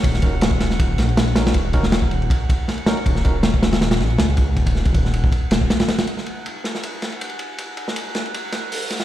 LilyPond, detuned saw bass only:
\new Staff \with { instrumentName = "Detuned saw bass" } { \clef bass \time 4/4 \key ees \minor \tempo 4 = 159 ees,,2 ees,,8 bes,,4. | ees,,2 r2 | ees,,2~ ees,,8 bes,,8 des,4 | ees,,2 r8 ees,,8 r4 |
r1 | r1 | }